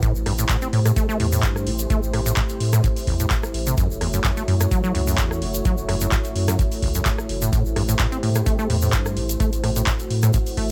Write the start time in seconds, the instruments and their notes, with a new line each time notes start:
0.03 acid bass A2, analog synth pad A3 E4 G4 C5, kick, closed hi-hat, shaker
0.15 sub bass A1, shaker
0.26 sub bass A1, acid bass G2, cross-stick, open hi-hat
0.39 acid bass A2, closed hi-hat, shaker
0.49 acid bass A2, kick, clap, closed hi-hat, shaker
0.62 acid bass C4, closed hi-hat, shaker
0.73 sub bass A2, acid bass A2, open hi-hat
0.86 acid bass A2, cross-stick, closed hi-hat, shaker
0.96 acid bass A3, kick, closed hi-hat, shaker
1.09 acid bass A3, shaker
1.20 sub bass E2, acid bass A2, open hi-hat
1.32 acid bass A2, open hi-hat, shaker
1.43 acid bass G2, kick, clap, closed hi-hat, shaker
1.56 cross-stick, shaker
1.67 sub bass A1, acid bass A2, open hi-hat
1.79 closed hi-hat, shaker
1.90 acid bass A3, kick, closed hi-hat, shaker
2.03 sub bass A1, shaker
2.13 sub bass A1, acid bass A2, cross-stick, open hi-hat
2.26 acid bass A2, closed hi-hat, shaker
2.37 acid bass A2, kick, clap, closed hi-hat, shaker
2.49 closed hi-hat, shaker
2.60 sub bass A2, open hi-hat
2.73 acid bass A2, cross-stick, closed hi-hat, shaker
2.84 acid bass A2, kick, closed hi-hat, shaker
2.96 open hi-hat, shaker
3.07 acid bass A1, sub bass E2, kick, open hi-hat
3.20 acid bass A2, closed hi-hat, shaker
3.30 acid bass A2, kick, clap, closed hi-hat, shaker
3.43 cross-stick, shaker
3.54 sub bass A1, open hi-hat
3.67 acid bass C3, closed hi-hat, shaker
3.78 acid bass F#2, analog synth pad F#4 C#5, kick, closed hi-hat, shaker
3.90 sub bass F#1, shaker
4.01 sub bass F#1, acid bass E2, cross-stick, open hi-hat
4.14 acid bass F#2, closed hi-hat, shaker
4.24 acid bass F#2, kick, clap, closed hi-hat, shaker
4.37 acid bass A3, closed hi-hat, shaker
4.48 sub bass F#2, acid bass F#2, open hi-hat
4.60 acid bass F#2, cross-stick, closed hi-hat, shaker
4.71 acid bass F#3, kick, closed hi-hat, shaker
4.84 acid bass F#3, shaker
4.95 sub bass C#2, acid bass F#2, open hi-hat
5.07 acid bass F#2, open hi-hat, shaker
5.18 acid bass E2, kick, clap, closed hi-hat, shaker
5.31 cross-stick, shaker
5.42 sub bass F#1, acid bass F#2, open hi-hat
5.54 closed hi-hat, shaker
5.65 acid bass F#3, kick, closed hi-hat, shaker
5.78 sub bass F#1, shaker
5.88 sub bass F#1, acid bass F#2, cross-stick, open hi-hat
6.01 acid bass F#2, closed hi-hat, shaker
6.12 acid bass F#2, kick, clap, closed hi-hat, shaker
6.24 closed hi-hat, shaker
6.36 sub bass F#2, open hi-hat
6.48 acid bass F#2, cross-stick, closed hi-hat, shaker
6.59 acid bass F#2, kick, closed hi-hat, shaker
6.72 open hi-hat, shaker
6.82 acid bass F#1, sub bass C#2, kick, open hi-hat
6.95 acid bass F#2, closed hi-hat, shaker
7.05 acid bass F#2, kick, clap, closed hi-hat, shaker
7.18 cross-stick, shaker
7.29 sub bass F#1, open hi-hat
7.42 acid bass A2, closed hi-hat, shaker
7.52 acid bass A2, analog synth pad G4 C5, kick, closed hi-hat, shaker
7.65 sub bass A1, shaker
7.76 sub bass A1, acid bass G2, cross-stick, open hi-hat
7.89 acid bass A2, closed hi-hat, shaker
7.99 acid bass A2, kick, clap, closed hi-hat, shaker
8.12 acid bass C4, closed hi-hat, shaker
8.23 acid bass A2, sub bass A2, open hi-hat
8.35 acid bass A2, cross-stick, closed hi-hat, shaker
8.46 acid bass A3, kick, closed hi-hat, shaker
8.59 acid bass A3, shaker
8.70 sub bass E2, acid bass A2, open hi-hat
8.82 acid bass A2, open hi-hat, shaker
8.93 acid bass G2, kick, clap, closed hi-hat, shaker
9.06 cross-stick, shaker
9.16 sub bass A1, acid bass A2, open hi-hat
9.29 closed hi-hat, shaker
9.40 acid bass A3, analog synth pad F#4, kick, closed hi-hat, shaker
9.53 sub bass A1, closed hi-hat, shaker
9.63 sub bass A1, acid bass A2, cross-stick, open hi-hat
9.76 acid bass A2, closed hi-hat, shaker
9.87 acid bass A2, kick, clap, closed hi-hat, shaker
9.99 closed hi-hat, shaker
10.10 sub bass A2, open hi-hat
10.23 acid bass A2, cross-stick, closed hi-hat, shaker
10.33 acid bass A2, kick, closed hi-hat, shaker
10.46 open hi-hat, shaker
10.57 sub bass A1, acid bass A3, kick, open hi-hat